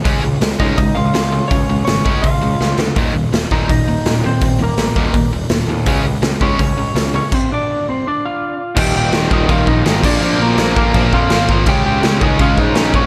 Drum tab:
CC |--------|--------|--------|--------|
HH |o-o-o-o-|o-o-o---|o-o-o-o-|o-o-o-o-|
SD |--o---o-|--o---oo|--o---o-|--o---o-|
BD |o--oo---|o--oo---|o--oo---|o--oo---|

CC |--------|x-------|x-x-x-xx|x-x-x-x-|
HH |o-o-o-o-|--------|--------|--------|
SD |--o---o-|--------|--o---o-|--o---o-|
BD |o--oo---|o-------|o--ooo-o|---ooo-o|

CC |x-x-x-x-|
HH |--------|
SD |--o---o-|
BD |o--ooo-o|